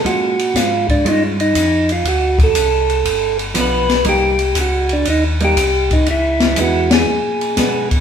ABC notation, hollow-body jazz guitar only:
X:1
M:4/4
L:1/8
Q:"Swing" 1/4=120
K:Bbdor
V:1 name="Hollow-body jazz guitar"
[A,DF] z3 [A,DF] z3 | z6 [F,=B,=D] z | [G,B,E] z4 [G,B,E] z2 | z2 [A,_C_F]2 z2 [A,C=D] z |]